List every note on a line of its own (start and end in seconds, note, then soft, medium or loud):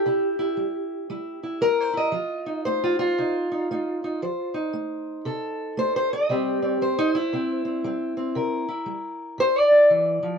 0.00 1.61 G4 loud
0.06 0.53 C3 medium
0.06 0.38 E4 medium
0.39 1.09 E4 medium
0.57 1.05 G3 medium
1.10 1.57 G3 medium
1.10 1.42 E4 medium
1.43 1.92 E4 soft
1.61 2.09 G3 medium
1.61 2.12 A#4 loud
1.80 1.97 C5 medium
1.93 2.11 E4 soft
1.93 2.65 D#5 medium
2.12 2.60 F3 medium
2.12 2.83 F4 medium
2.46 3.18 D#4 medium
2.65 3.13 A3 medium
2.65 3.34 C5 medium
2.84 2.98 F4 medium
2.99 4.55 F4 medium
3.18 3.65 C3 medium
3.18 3.50 D#4 soft
3.52 3.70 D#4 soft
3.71 4.18 A3 medium
3.71 4.02 D#4 soft
4.04 4.20 D#4 soft
4.22 4.69 F3 medium
4.22 5.78 C5 medium
4.54 6.26 D#4 soft
4.73 5.21 A3 medium
5.25 5.72 C3 medium
5.25 6.26 A4 medium
5.77 6.24 A3 medium
5.77 5.95 C5 medium
5.96 6.12 C5 loud
6.13 6.67 D#5 medium
6.29 6.76 C3 medium
6.29 6.81 G3 soft
6.29 6.62 C4 medium
6.29 7.14 G4 medium
6.62 6.98 C4 soft
6.67 6.81 C#5 medium
6.82 7.28 G3 medium
6.82 7.50 C5 medium
6.99 7.15 D#4 loud
7.15 8.67 E4 medium
7.33 7.80 C3 medium
7.33 7.64 C4 medium
7.65 7.84 C4 soft
7.84 8.32 G3 medium
7.84 8.16 C4 soft
8.17 8.68 C4 soft
8.35 8.83 C3 medium
8.35 9.39 A#4 medium
8.68 9.70 E4 medium
8.86 9.34 G3 medium
9.38 9.86 C3 medium
9.38 9.58 C5 loud
9.58 10.38 D5 medium
9.71 10.38 E4 soft
9.90 10.22 E3 medium
10.23 10.38 F3 medium